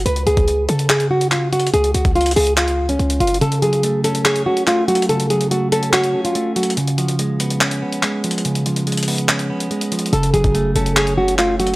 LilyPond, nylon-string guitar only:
\new Staff \with { instrumentName = "Nylon-string guitar" } { \time 4/4 \key fis \minor \tempo 4 = 143 b'8 gis'4 a'8 gis'8 fis'8 eis'8 fis'8 | gis'8 fis'8 eis'8 gis'8 eis'8. cis'8. eis'8 | a'8 gis'4 a'8 gis'8 fis'8 eis'8 fis'8 | a'8 gis'8 fis'8 a'8 fis'8. eis'8. fis'8 |
r1 | r1 | a'8 gis'4 a'8 gis'8 fis'8 eis'8 fis'8 | }